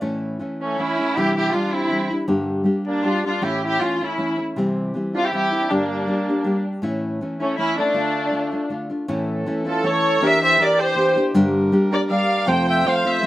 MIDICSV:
0, 0, Header, 1, 5, 480
1, 0, Start_track
1, 0, Tempo, 378549
1, 24, Time_signature, 3, 2, 24, 8
1, 12024, Tempo, 374532
1, 16871, End_track
2, 0, Start_track
2, 0, Title_t, "Violin section"
2, 0, Program_c, 0, 48
2, 787, Note_on_c, 0, 61, 78
2, 987, Note_off_c, 0, 61, 0
2, 1017, Note_on_c, 0, 64, 93
2, 1481, Note_off_c, 0, 64, 0
2, 1488, Note_on_c, 0, 67, 100
2, 1721, Note_off_c, 0, 67, 0
2, 1736, Note_on_c, 0, 67, 91
2, 1938, Note_off_c, 0, 67, 0
2, 1952, Note_on_c, 0, 65, 76
2, 2198, Note_off_c, 0, 65, 0
2, 2214, Note_on_c, 0, 64, 86
2, 2680, Note_off_c, 0, 64, 0
2, 3643, Note_on_c, 0, 62, 79
2, 3849, Note_off_c, 0, 62, 0
2, 3869, Note_on_c, 0, 65, 89
2, 4115, Note_off_c, 0, 65, 0
2, 4135, Note_on_c, 0, 65, 72
2, 4335, Note_off_c, 0, 65, 0
2, 4360, Note_on_c, 0, 67, 80
2, 4601, Note_off_c, 0, 67, 0
2, 4639, Note_on_c, 0, 67, 98
2, 4830, Note_off_c, 0, 67, 0
2, 4851, Note_on_c, 0, 65, 83
2, 5089, Note_off_c, 0, 65, 0
2, 5121, Note_on_c, 0, 64, 75
2, 5581, Note_off_c, 0, 64, 0
2, 6540, Note_on_c, 0, 65, 86
2, 6638, Note_off_c, 0, 65, 0
2, 6661, Note_on_c, 0, 67, 86
2, 6750, Note_off_c, 0, 67, 0
2, 6765, Note_on_c, 0, 67, 86
2, 7205, Note_off_c, 0, 67, 0
2, 7246, Note_on_c, 0, 62, 72
2, 8443, Note_off_c, 0, 62, 0
2, 9392, Note_on_c, 0, 61, 83
2, 9598, Note_on_c, 0, 64, 96
2, 9603, Note_off_c, 0, 61, 0
2, 9841, Note_off_c, 0, 64, 0
2, 9862, Note_on_c, 0, 62, 90
2, 11004, Note_off_c, 0, 62, 0
2, 12281, Note_on_c, 0, 69, 89
2, 12492, Note_off_c, 0, 69, 0
2, 12502, Note_on_c, 0, 73, 102
2, 12984, Note_off_c, 0, 73, 0
2, 13008, Note_on_c, 0, 76, 116
2, 13229, Note_off_c, 0, 76, 0
2, 13245, Note_on_c, 0, 76, 105
2, 13453, Note_off_c, 0, 76, 0
2, 13480, Note_on_c, 0, 74, 90
2, 13723, Note_off_c, 0, 74, 0
2, 13734, Note_on_c, 0, 72, 106
2, 14202, Note_off_c, 0, 72, 0
2, 15162, Note_on_c, 0, 74, 93
2, 15262, Note_off_c, 0, 74, 0
2, 15393, Note_on_c, 0, 77, 84
2, 15832, Note_off_c, 0, 77, 0
2, 15866, Note_on_c, 0, 79, 93
2, 16114, Note_off_c, 0, 79, 0
2, 16132, Note_on_c, 0, 79, 91
2, 16335, Note_off_c, 0, 79, 0
2, 16379, Note_on_c, 0, 77, 82
2, 16612, Note_off_c, 0, 77, 0
2, 16640, Note_on_c, 0, 76, 92
2, 16871, Note_off_c, 0, 76, 0
2, 16871, End_track
3, 0, Start_track
3, 0, Title_t, "Trumpet"
3, 0, Program_c, 1, 56
3, 809, Note_on_c, 1, 57, 59
3, 1031, Note_on_c, 1, 61, 75
3, 1050, Note_off_c, 1, 57, 0
3, 1478, Note_on_c, 1, 64, 81
3, 1497, Note_off_c, 1, 61, 0
3, 1723, Note_off_c, 1, 64, 0
3, 1734, Note_on_c, 1, 64, 67
3, 1973, Note_on_c, 1, 62, 56
3, 1992, Note_off_c, 1, 64, 0
3, 2196, Note_on_c, 1, 60, 68
3, 2215, Note_off_c, 1, 62, 0
3, 2671, Note_off_c, 1, 60, 0
3, 3642, Note_on_c, 1, 58, 64
3, 3869, Note_on_c, 1, 62, 75
3, 3888, Note_off_c, 1, 58, 0
3, 4115, Note_off_c, 1, 62, 0
3, 4141, Note_on_c, 1, 62, 68
3, 4368, Note_on_c, 1, 64, 77
3, 4387, Note_off_c, 1, 62, 0
3, 4605, Note_off_c, 1, 64, 0
3, 4618, Note_on_c, 1, 64, 69
3, 4864, Note_on_c, 1, 61, 58
3, 4883, Note_off_c, 1, 64, 0
3, 5102, Note_off_c, 1, 61, 0
3, 5102, Note_on_c, 1, 61, 52
3, 5572, Note_off_c, 1, 61, 0
3, 6524, Note_on_c, 1, 62, 56
3, 6640, Note_on_c, 1, 64, 74
3, 6659, Note_off_c, 1, 62, 0
3, 6752, Note_off_c, 1, 64, 0
3, 6768, Note_on_c, 1, 64, 74
3, 7254, Note_on_c, 1, 58, 62
3, 7273, Note_off_c, 1, 64, 0
3, 8447, Note_off_c, 1, 58, 0
3, 9396, Note_on_c, 1, 57, 59
3, 9605, Note_off_c, 1, 57, 0
3, 9622, Note_on_c, 1, 61, 65
3, 9853, Note_off_c, 1, 61, 0
3, 9868, Note_on_c, 1, 57, 61
3, 11007, Note_off_c, 1, 57, 0
3, 12273, Note_on_c, 1, 65, 64
3, 12500, Note_on_c, 1, 69, 78
3, 12519, Note_off_c, 1, 65, 0
3, 12986, Note_on_c, 1, 70, 82
3, 13005, Note_off_c, 1, 69, 0
3, 13223, Note_off_c, 1, 70, 0
3, 13231, Note_on_c, 1, 72, 69
3, 13459, Note_on_c, 1, 70, 65
3, 13478, Note_off_c, 1, 72, 0
3, 13719, Note_on_c, 1, 67, 59
3, 13738, Note_off_c, 1, 70, 0
3, 14194, Note_off_c, 1, 67, 0
3, 15140, Note_on_c, 1, 70, 52
3, 15245, Note_off_c, 1, 70, 0
3, 15393, Note_on_c, 1, 74, 66
3, 15871, Note_on_c, 1, 72, 74
3, 15890, Note_off_c, 1, 74, 0
3, 16117, Note_off_c, 1, 72, 0
3, 16136, Note_on_c, 1, 76, 76
3, 16370, Note_on_c, 1, 72, 68
3, 16389, Note_off_c, 1, 76, 0
3, 16611, Note_off_c, 1, 72, 0
3, 16611, Note_on_c, 1, 72, 83
3, 16871, Note_off_c, 1, 72, 0
3, 16871, End_track
4, 0, Start_track
4, 0, Title_t, "Brass ensemble"
4, 0, Program_c, 2, 61
4, 11549, Note_on_c, 2, 61, 58
4, 11551, Note_on_c, 2, 52, 66
4, 11551, Note_on_c, 2, 69, 65
4, 12965, Note_off_c, 2, 52, 0
4, 12975, Note_off_c, 2, 61, 0
4, 12976, Note_off_c, 2, 69, 0
4, 12980, Note_on_c, 2, 52, 61
4, 12981, Note_on_c, 2, 62, 54
4, 12982, Note_on_c, 2, 67, 71
4, 14403, Note_off_c, 2, 52, 0
4, 14403, Note_off_c, 2, 67, 0
4, 14416, Note_on_c, 2, 70, 68
4, 14430, Note_on_c, 2, 55, 68
4, 15827, Note_off_c, 2, 62, 0
4, 15842, Note_off_c, 2, 70, 0
4, 15849, Note_off_c, 2, 55, 0
4, 15866, Note_on_c, 2, 57, 66
4, 15867, Note_on_c, 2, 65, 60
4, 15868, Note_on_c, 2, 72, 78
4, 16871, Note_off_c, 2, 57, 0
4, 16871, Note_off_c, 2, 65, 0
4, 16871, Note_off_c, 2, 72, 0
4, 16871, End_track
5, 0, Start_track
5, 0, Title_t, "Nylon-string guitar"
5, 0, Program_c, 3, 24
5, 11, Note_on_c, 3, 45, 62
5, 14, Note_on_c, 3, 52, 78
5, 21, Note_on_c, 3, 64, 86
5, 22, Note_on_c, 3, 57, 76
5, 22, Note_on_c, 3, 61, 78
5, 484, Note_off_c, 3, 52, 0
5, 495, Note_off_c, 3, 57, 0
5, 499, Note_on_c, 3, 52, 56
5, 500, Note_off_c, 3, 61, 0
5, 501, Note_off_c, 3, 45, 0
5, 506, Note_off_c, 3, 64, 0
5, 510, Note_on_c, 3, 57, 46
5, 516, Note_on_c, 3, 61, 60
5, 527, Note_on_c, 3, 64, 51
5, 974, Note_off_c, 3, 52, 0
5, 979, Note_off_c, 3, 57, 0
5, 983, Note_off_c, 3, 61, 0
5, 989, Note_on_c, 3, 52, 53
5, 992, Note_off_c, 3, 64, 0
5, 995, Note_on_c, 3, 57, 54
5, 998, Note_on_c, 3, 61, 49
5, 1007, Note_on_c, 3, 64, 58
5, 1219, Note_off_c, 3, 64, 0
5, 1235, Note_on_c, 3, 64, 46
5, 1237, Note_off_c, 3, 61, 0
5, 1240, Note_off_c, 3, 52, 0
5, 1243, Note_off_c, 3, 57, 0
5, 1253, Note_on_c, 3, 61, 46
5, 1270, Note_on_c, 3, 57, 38
5, 1465, Note_off_c, 3, 64, 0
5, 1473, Note_off_c, 3, 61, 0
5, 1482, Note_off_c, 3, 57, 0
5, 1483, Note_on_c, 3, 48, 66
5, 1484, Note_on_c, 3, 52, 69
5, 1488, Note_on_c, 3, 55, 74
5, 1488, Note_on_c, 3, 64, 80
5, 1494, Note_on_c, 3, 62, 81
5, 1915, Note_off_c, 3, 52, 0
5, 1918, Note_off_c, 3, 55, 0
5, 1923, Note_off_c, 3, 62, 0
5, 1930, Note_on_c, 3, 52, 48
5, 1933, Note_on_c, 3, 55, 49
5, 1935, Note_off_c, 3, 64, 0
5, 1938, Note_on_c, 3, 62, 51
5, 1951, Note_on_c, 3, 64, 45
5, 1953, Note_off_c, 3, 48, 0
5, 2178, Note_off_c, 3, 64, 0
5, 2187, Note_off_c, 3, 52, 0
5, 2189, Note_off_c, 3, 55, 0
5, 2191, Note_off_c, 3, 62, 0
5, 2193, Note_on_c, 3, 64, 42
5, 2205, Note_on_c, 3, 62, 39
5, 2212, Note_on_c, 3, 55, 36
5, 2396, Note_off_c, 3, 55, 0
5, 2398, Note_on_c, 3, 52, 50
5, 2402, Note_off_c, 3, 62, 0
5, 2407, Note_off_c, 3, 64, 0
5, 2411, Note_on_c, 3, 55, 53
5, 2417, Note_on_c, 3, 62, 56
5, 2422, Note_on_c, 3, 64, 63
5, 2647, Note_off_c, 3, 64, 0
5, 2659, Note_off_c, 3, 52, 0
5, 2662, Note_on_c, 3, 64, 54
5, 2665, Note_off_c, 3, 62, 0
5, 2666, Note_off_c, 3, 55, 0
5, 2679, Note_on_c, 3, 55, 42
5, 2681, Note_on_c, 3, 62, 38
5, 2873, Note_off_c, 3, 55, 0
5, 2880, Note_off_c, 3, 62, 0
5, 2885, Note_on_c, 3, 50, 89
5, 2886, Note_on_c, 3, 43, 77
5, 2888, Note_on_c, 3, 55, 86
5, 2890, Note_off_c, 3, 64, 0
5, 2895, Note_on_c, 3, 62, 81
5, 2895, Note_on_c, 3, 67, 94
5, 2898, Note_on_c, 3, 58, 83
5, 3331, Note_off_c, 3, 55, 0
5, 3346, Note_off_c, 3, 58, 0
5, 3346, Note_on_c, 3, 55, 52
5, 3352, Note_off_c, 3, 62, 0
5, 3353, Note_off_c, 3, 67, 0
5, 3361, Note_on_c, 3, 58, 49
5, 3368, Note_on_c, 3, 62, 59
5, 3368, Note_on_c, 3, 67, 61
5, 3371, Note_off_c, 3, 43, 0
5, 3371, Note_off_c, 3, 50, 0
5, 3831, Note_off_c, 3, 58, 0
5, 3834, Note_off_c, 3, 55, 0
5, 3837, Note_off_c, 3, 62, 0
5, 3845, Note_off_c, 3, 67, 0
5, 3846, Note_on_c, 3, 58, 59
5, 3849, Note_on_c, 3, 55, 47
5, 3852, Note_on_c, 3, 62, 54
5, 3860, Note_on_c, 3, 67, 60
5, 4084, Note_off_c, 3, 67, 0
5, 4089, Note_off_c, 3, 62, 0
5, 4093, Note_off_c, 3, 58, 0
5, 4100, Note_on_c, 3, 67, 44
5, 4104, Note_on_c, 3, 62, 41
5, 4105, Note_off_c, 3, 55, 0
5, 4108, Note_on_c, 3, 58, 41
5, 4120, Note_on_c, 3, 55, 40
5, 4322, Note_off_c, 3, 55, 0
5, 4327, Note_on_c, 3, 52, 68
5, 4330, Note_on_c, 3, 45, 72
5, 4332, Note_off_c, 3, 58, 0
5, 4332, Note_off_c, 3, 62, 0
5, 4333, Note_off_c, 3, 67, 0
5, 4337, Note_on_c, 3, 57, 85
5, 4337, Note_on_c, 3, 61, 76
5, 4340, Note_on_c, 3, 64, 74
5, 4806, Note_off_c, 3, 52, 0
5, 4810, Note_off_c, 3, 57, 0
5, 4811, Note_off_c, 3, 61, 0
5, 4814, Note_off_c, 3, 64, 0
5, 4816, Note_off_c, 3, 45, 0
5, 4822, Note_on_c, 3, 52, 47
5, 4826, Note_on_c, 3, 57, 48
5, 4827, Note_on_c, 3, 61, 50
5, 5074, Note_off_c, 3, 52, 0
5, 5076, Note_off_c, 3, 57, 0
5, 5076, Note_off_c, 3, 61, 0
5, 5078, Note_on_c, 3, 64, 45
5, 5093, Note_on_c, 3, 57, 35
5, 5093, Note_on_c, 3, 61, 34
5, 5289, Note_off_c, 3, 57, 0
5, 5290, Note_off_c, 3, 61, 0
5, 5294, Note_on_c, 3, 52, 58
5, 5301, Note_off_c, 3, 64, 0
5, 5305, Note_on_c, 3, 57, 54
5, 5305, Note_on_c, 3, 61, 58
5, 5316, Note_on_c, 3, 64, 56
5, 5532, Note_off_c, 3, 64, 0
5, 5540, Note_off_c, 3, 61, 0
5, 5547, Note_on_c, 3, 64, 39
5, 5552, Note_off_c, 3, 57, 0
5, 5553, Note_off_c, 3, 52, 0
5, 5555, Note_on_c, 3, 61, 39
5, 5567, Note_on_c, 3, 57, 38
5, 5781, Note_off_c, 3, 64, 0
5, 5785, Note_off_c, 3, 61, 0
5, 5785, Note_on_c, 3, 48, 81
5, 5786, Note_off_c, 3, 57, 0
5, 5791, Note_on_c, 3, 55, 79
5, 5794, Note_on_c, 3, 52, 67
5, 5807, Note_on_c, 3, 60, 85
5, 5807, Note_on_c, 3, 64, 70
5, 6246, Note_off_c, 3, 52, 0
5, 6260, Note_off_c, 3, 55, 0
5, 6262, Note_on_c, 3, 52, 52
5, 6265, Note_off_c, 3, 60, 0
5, 6268, Note_off_c, 3, 48, 0
5, 6275, Note_on_c, 3, 55, 53
5, 6279, Note_off_c, 3, 64, 0
5, 6281, Note_on_c, 3, 60, 48
5, 6296, Note_on_c, 3, 64, 58
5, 6508, Note_off_c, 3, 64, 0
5, 6518, Note_off_c, 3, 52, 0
5, 6523, Note_on_c, 3, 64, 39
5, 6525, Note_off_c, 3, 55, 0
5, 6527, Note_off_c, 3, 60, 0
5, 6548, Note_on_c, 3, 60, 38
5, 6554, Note_on_c, 3, 55, 32
5, 6737, Note_off_c, 3, 55, 0
5, 6738, Note_on_c, 3, 52, 44
5, 6741, Note_off_c, 3, 60, 0
5, 6749, Note_off_c, 3, 64, 0
5, 6752, Note_on_c, 3, 55, 46
5, 6756, Note_on_c, 3, 60, 47
5, 6764, Note_on_c, 3, 64, 60
5, 6985, Note_off_c, 3, 64, 0
5, 6993, Note_off_c, 3, 60, 0
5, 6996, Note_off_c, 3, 52, 0
5, 7000, Note_on_c, 3, 64, 47
5, 7004, Note_off_c, 3, 55, 0
5, 7008, Note_on_c, 3, 60, 47
5, 7019, Note_on_c, 3, 55, 38
5, 7216, Note_off_c, 3, 55, 0
5, 7224, Note_on_c, 3, 43, 66
5, 7230, Note_off_c, 3, 64, 0
5, 7232, Note_on_c, 3, 55, 61
5, 7233, Note_off_c, 3, 60, 0
5, 7234, Note_on_c, 3, 50, 58
5, 7236, Note_on_c, 3, 67, 78
5, 7242, Note_on_c, 3, 58, 71
5, 7244, Note_on_c, 3, 62, 74
5, 7682, Note_off_c, 3, 55, 0
5, 7694, Note_off_c, 3, 58, 0
5, 7698, Note_on_c, 3, 55, 48
5, 7702, Note_off_c, 3, 62, 0
5, 7702, Note_off_c, 3, 67, 0
5, 7705, Note_off_c, 3, 43, 0
5, 7709, Note_on_c, 3, 58, 52
5, 7710, Note_off_c, 3, 50, 0
5, 7717, Note_on_c, 3, 62, 44
5, 7717, Note_on_c, 3, 67, 54
5, 7953, Note_off_c, 3, 55, 0
5, 7959, Note_off_c, 3, 58, 0
5, 7959, Note_off_c, 3, 67, 0
5, 7963, Note_off_c, 3, 62, 0
5, 7975, Note_on_c, 3, 67, 46
5, 7985, Note_on_c, 3, 62, 50
5, 7990, Note_on_c, 3, 58, 43
5, 7994, Note_on_c, 3, 55, 36
5, 8155, Note_off_c, 3, 55, 0
5, 8166, Note_off_c, 3, 58, 0
5, 8170, Note_on_c, 3, 55, 69
5, 8180, Note_off_c, 3, 62, 0
5, 8180, Note_off_c, 3, 67, 0
5, 8181, Note_on_c, 3, 58, 60
5, 8195, Note_on_c, 3, 62, 61
5, 8195, Note_on_c, 3, 67, 59
5, 8645, Note_on_c, 3, 45, 83
5, 8651, Note_off_c, 3, 55, 0
5, 8652, Note_off_c, 3, 58, 0
5, 8656, Note_on_c, 3, 52, 76
5, 8657, Note_off_c, 3, 67, 0
5, 8657, Note_on_c, 3, 57, 83
5, 8659, Note_off_c, 3, 62, 0
5, 8662, Note_on_c, 3, 64, 92
5, 8664, Note_on_c, 3, 61, 87
5, 9128, Note_off_c, 3, 52, 0
5, 9131, Note_off_c, 3, 45, 0
5, 9140, Note_off_c, 3, 64, 0
5, 9141, Note_off_c, 3, 61, 0
5, 9143, Note_on_c, 3, 52, 58
5, 9153, Note_off_c, 3, 57, 0
5, 9156, Note_on_c, 3, 61, 57
5, 9158, Note_on_c, 3, 57, 54
5, 9162, Note_on_c, 3, 64, 55
5, 9368, Note_off_c, 3, 61, 0
5, 9370, Note_off_c, 3, 64, 0
5, 9383, Note_on_c, 3, 61, 39
5, 9385, Note_on_c, 3, 64, 48
5, 9388, Note_off_c, 3, 57, 0
5, 9392, Note_off_c, 3, 52, 0
5, 9403, Note_on_c, 3, 57, 36
5, 9598, Note_off_c, 3, 57, 0
5, 9610, Note_off_c, 3, 61, 0
5, 9613, Note_on_c, 3, 57, 62
5, 9615, Note_off_c, 3, 64, 0
5, 9618, Note_on_c, 3, 52, 45
5, 9625, Note_on_c, 3, 61, 53
5, 9636, Note_on_c, 3, 64, 61
5, 9834, Note_off_c, 3, 64, 0
5, 9840, Note_off_c, 3, 61, 0
5, 9848, Note_off_c, 3, 57, 0
5, 9850, Note_on_c, 3, 64, 46
5, 9855, Note_on_c, 3, 61, 41
5, 9863, Note_on_c, 3, 57, 40
5, 9869, Note_off_c, 3, 52, 0
5, 10056, Note_off_c, 3, 57, 0
5, 10066, Note_off_c, 3, 64, 0
5, 10069, Note_on_c, 3, 50, 64
5, 10070, Note_off_c, 3, 61, 0
5, 10071, Note_on_c, 3, 57, 72
5, 10071, Note_on_c, 3, 65, 80
5, 10076, Note_on_c, 3, 62, 73
5, 10534, Note_off_c, 3, 50, 0
5, 10541, Note_off_c, 3, 57, 0
5, 10549, Note_on_c, 3, 50, 52
5, 10550, Note_off_c, 3, 62, 0
5, 10556, Note_on_c, 3, 57, 52
5, 10558, Note_off_c, 3, 65, 0
5, 10565, Note_on_c, 3, 62, 58
5, 10573, Note_on_c, 3, 65, 58
5, 10786, Note_off_c, 3, 65, 0
5, 10798, Note_off_c, 3, 62, 0
5, 10801, Note_on_c, 3, 65, 47
5, 10812, Note_off_c, 3, 57, 0
5, 10814, Note_off_c, 3, 50, 0
5, 10814, Note_on_c, 3, 62, 40
5, 10827, Note_on_c, 3, 57, 36
5, 11019, Note_off_c, 3, 57, 0
5, 11023, Note_off_c, 3, 62, 0
5, 11024, Note_on_c, 3, 50, 51
5, 11034, Note_on_c, 3, 57, 57
5, 11036, Note_off_c, 3, 65, 0
5, 11038, Note_on_c, 3, 62, 64
5, 11051, Note_on_c, 3, 65, 59
5, 11264, Note_off_c, 3, 65, 0
5, 11277, Note_off_c, 3, 62, 0
5, 11280, Note_on_c, 3, 65, 48
5, 11286, Note_off_c, 3, 57, 0
5, 11292, Note_on_c, 3, 62, 45
5, 11295, Note_off_c, 3, 50, 0
5, 11301, Note_on_c, 3, 57, 39
5, 11504, Note_off_c, 3, 57, 0
5, 11517, Note_off_c, 3, 62, 0
5, 11517, Note_on_c, 3, 45, 84
5, 11517, Note_on_c, 3, 52, 87
5, 11518, Note_off_c, 3, 65, 0
5, 11519, Note_on_c, 3, 57, 87
5, 11522, Note_on_c, 3, 61, 94
5, 11523, Note_on_c, 3, 64, 97
5, 11983, Note_off_c, 3, 52, 0
5, 11985, Note_off_c, 3, 57, 0
5, 11995, Note_off_c, 3, 61, 0
5, 11998, Note_on_c, 3, 52, 52
5, 12000, Note_off_c, 3, 64, 0
5, 12000, Note_on_c, 3, 57, 60
5, 12010, Note_off_c, 3, 45, 0
5, 12010, Note_on_c, 3, 61, 63
5, 12015, Note_on_c, 3, 64, 67
5, 12219, Note_off_c, 3, 64, 0
5, 12234, Note_on_c, 3, 64, 50
5, 12236, Note_off_c, 3, 57, 0
5, 12240, Note_off_c, 3, 61, 0
5, 12251, Note_on_c, 3, 57, 38
5, 12256, Note_on_c, 3, 61, 47
5, 12264, Note_off_c, 3, 52, 0
5, 12468, Note_off_c, 3, 57, 0
5, 12471, Note_off_c, 3, 61, 0
5, 12475, Note_on_c, 3, 52, 59
5, 12476, Note_off_c, 3, 64, 0
5, 12483, Note_on_c, 3, 57, 59
5, 12486, Note_on_c, 3, 61, 53
5, 12491, Note_on_c, 3, 64, 59
5, 12938, Note_off_c, 3, 52, 0
5, 12954, Note_on_c, 3, 52, 84
5, 12955, Note_off_c, 3, 57, 0
5, 12960, Note_on_c, 3, 58, 88
5, 12963, Note_off_c, 3, 61, 0
5, 12968, Note_off_c, 3, 64, 0
5, 12969, Note_on_c, 3, 62, 90
5, 12974, Note_on_c, 3, 67, 81
5, 13424, Note_off_c, 3, 58, 0
5, 13426, Note_off_c, 3, 52, 0
5, 13438, Note_off_c, 3, 62, 0
5, 13439, Note_off_c, 3, 67, 0
5, 13440, Note_on_c, 3, 58, 55
5, 13441, Note_on_c, 3, 52, 48
5, 13453, Note_on_c, 3, 62, 59
5, 13454, Note_on_c, 3, 67, 68
5, 13900, Note_off_c, 3, 52, 0
5, 13901, Note_off_c, 3, 58, 0
5, 13915, Note_on_c, 3, 52, 59
5, 13916, Note_off_c, 3, 62, 0
5, 13917, Note_on_c, 3, 58, 68
5, 13919, Note_off_c, 3, 67, 0
5, 13932, Note_on_c, 3, 62, 76
5, 13934, Note_on_c, 3, 67, 75
5, 14154, Note_off_c, 3, 67, 0
5, 14166, Note_off_c, 3, 62, 0
5, 14167, Note_off_c, 3, 58, 0
5, 14170, Note_on_c, 3, 67, 54
5, 14179, Note_off_c, 3, 52, 0
5, 14181, Note_on_c, 3, 62, 50
5, 14183, Note_on_c, 3, 58, 54
5, 14397, Note_off_c, 3, 67, 0
5, 14402, Note_off_c, 3, 58, 0
5, 14402, Note_off_c, 3, 62, 0
5, 14409, Note_on_c, 3, 43, 88
5, 14410, Note_on_c, 3, 50, 88
5, 14411, Note_on_c, 3, 55, 105
5, 14413, Note_on_c, 3, 67, 97
5, 14417, Note_on_c, 3, 58, 85
5, 14417, Note_on_c, 3, 62, 106
5, 14878, Note_off_c, 3, 55, 0
5, 14888, Note_off_c, 3, 62, 0
5, 14890, Note_off_c, 3, 67, 0
5, 14893, Note_off_c, 3, 58, 0
5, 14893, Note_on_c, 3, 55, 72
5, 14894, Note_off_c, 3, 43, 0
5, 14894, Note_off_c, 3, 50, 0
5, 14904, Note_on_c, 3, 62, 73
5, 14906, Note_on_c, 3, 67, 69
5, 14908, Note_on_c, 3, 58, 62
5, 15122, Note_off_c, 3, 67, 0
5, 15132, Note_off_c, 3, 62, 0
5, 15134, Note_off_c, 3, 58, 0
5, 15138, Note_on_c, 3, 67, 51
5, 15147, Note_on_c, 3, 62, 41
5, 15148, Note_off_c, 3, 55, 0
5, 15150, Note_on_c, 3, 58, 51
5, 15163, Note_on_c, 3, 55, 44
5, 15365, Note_off_c, 3, 55, 0
5, 15372, Note_off_c, 3, 58, 0
5, 15372, Note_off_c, 3, 67, 0
5, 15377, Note_off_c, 3, 62, 0
5, 15380, Note_on_c, 3, 55, 61
5, 15387, Note_on_c, 3, 58, 65
5, 15396, Note_on_c, 3, 67, 68
5, 15398, Note_on_c, 3, 62, 61
5, 15848, Note_off_c, 3, 58, 0
5, 15849, Note_on_c, 3, 41, 62
5, 15850, Note_off_c, 3, 55, 0
5, 15853, Note_off_c, 3, 62, 0
5, 15853, Note_on_c, 3, 57, 80
5, 15855, Note_on_c, 3, 48, 76
5, 15855, Note_on_c, 3, 53, 85
5, 15858, Note_off_c, 3, 67, 0
5, 15858, Note_on_c, 3, 60, 90
5, 15863, Note_on_c, 3, 65, 90
5, 16326, Note_off_c, 3, 53, 0
5, 16333, Note_off_c, 3, 57, 0
5, 16334, Note_off_c, 3, 41, 0
5, 16338, Note_off_c, 3, 48, 0
5, 16339, Note_off_c, 3, 60, 0
5, 16341, Note_off_c, 3, 65, 0
5, 16341, Note_on_c, 3, 53, 54
5, 16348, Note_on_c, 3, 57, 51
5, 16359, Note_on_c, 3, 60, 60
5, 16365, Note_on_c, 3, 65, 63
5, 16576, Note_off_c, 3, 65, 0
5, 16591, Note_on_c, 3, 65, 52
5, 16592, Note_off_c, 3, 60, 0
5, 16593, Note_off_c, 3, 53, 0
5, 16597, Note_off_c, 3, 57, 0
5, 16607, Note_on_c, 3, 60, 42
5, 16612, Note_on_c, 3, 57, 46
5, 16619, Note_on_c, 3, 53, 40
5, 16787, Note_off_c, 3, 53, 0
5, 16792, Note_off_c, 3, 57, 0
5, 16798, Note_off_c, 3, 60, 0
5, 16802, Note_on_c, 3, 53, 59
5, 16808, Note_on_c, 3, 57, 57
5, 16811, Note_off_c, 3, 65, 0
5, 16813, Note_on_c, 3, 60, 63
5, 16826, Note_on_c, 3, 65, 67
5, 16871, Note_off_c, 3, 53, 0
5, 16871, Note_off_c, 3, 57, 0
5, 16871, Note_off_c, 3, 60, 0
5, 16871, Note_off_c, 3, 65, 0
5, 16871, End_track
0, 0, End_of_file